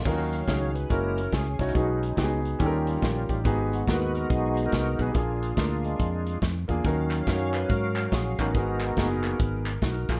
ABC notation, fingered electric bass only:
X:1
M:4/4
L:1/8
Q:"Swing" 1/4=141
K:Ebm
V:1 name="Fingered electric bass" clef=bass
E,,2 D,,2 G,,,2 D,, =C,, | =B,,,2 D,,2 E,,2 _B,,, =A,,, | A,,,2 E,,2 C,,2 =C,, _C,, | B,,,2 =D,,2 F,,2 F,, _F,, |
E,,2 G,,2 A,,2 B,,, =A,,, | A,,,2 G,,,2 A,,,2 C,, B,,, |]